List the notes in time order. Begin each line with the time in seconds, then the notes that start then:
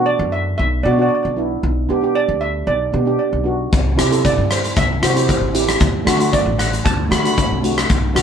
Already playing: B2 B3 D4 F#4
0.06 D5
0.19 F#2
0.32 E5
0.58 B1 E5
0.83 B2 B3 D4 F#4 D5
0.92 D5
0.98 B3 D4 F#4
1.02 D5
1.09 D5
1.15 D5
1.23 B1 D5
1.36 B3 D4 E4
1.63 B1
1.89 B2 B3 D4 G4
2.01 B3 D4 G4
2.15 D5
2.29 D2
2.41 E5
2.67 B1 D5
2.92 B2 B3 D4 G4
3.06 B3 D4 G4
3.19 D5
3.33 B1
3.44 B3 D4 F#4
3.73 C2, kick, closed hi-hat
3.97 C3 C4 E4 G4, cross-stick, closed hi-hat
4.10 C4 E4 A4, closed hi-hat
4.25 D5, kick, closed hi-hat
4.38 G2
4.51 C5, cross-stick, closed hi-hat
4.64 closed hi-hat
4.76 C2 E5, kick, closed hi-hat
5.01 C3 C4 E4 F#4 C5, cross-stick, closed hi-hat
5.12 C4 E4 C5
5.16 G4, closed hi-hat
5.20 C5
5.27 C5, kick, closed hi-hat
5.34 C5
5.41 A1 C5
5.53 C4 E4 G4, closed hi-hat
5.69 cross-stick, closed hi-hat
5.80 D2, kick, closed hi-hat
6.04 D3 A3 D4 F#4, cross-stick, closed hi-hat
6.18 A3 D4 F#4, closed hi-hat
6.33 D5, kick, closed hi-hat
6.46 A1
6.59 F#5, cross-stick, closed hi-hat
6.73 closed hi-hat
6.85 D2 A5, kick, closed hi-hat
7.09 D3 A3 D4 F#4 B5, cross-stick, closed hi-hat
7.18 B5
7.23 A3 D4 F#4 B5, closed hi-hat
7.34 B5, kick
7.38 B5, closed hi-hat
7.47 C2 B5
7.61 A3 D4 F#4, closed hi-hat
7.78 cross-stick, closed hi-hat
7.90 B1, kick, closed hi-hat
8.14 B2 B3 D4 F#4, cross-stick, closed hi-hat